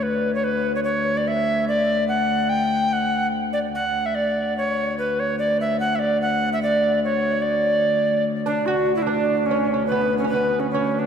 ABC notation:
X:1
M:3/4
L:1/16
Q:1/4=146
K:D
V:1 name="Recorder"
B3 c B3 c c3 d | e4 d4 f4 | g4 f3- f/2 z2 z/2 d2 | f3 e d4 c4 |
B2 c2 d2 e2 f3/2 e/2 d2 | f3 e d4 c4 | d8 z2 D2 | F3 E D4 C4 |
B3 C B3 C C3 D |]
V:2 name="Lute"
z12 | z12 | z12 | z12 |
z12 | z12 | z8 z2 D2 | F3 E D4 C2 C2 |
B,3 C B,4 C4 |]
V:3 name="Viola da gamba" clef=bass
D,,12- | D,,12- | D,,12 | D,,12- |
D,,12- | D,,12- | D,,12 | D,,12- |
D,,12 |]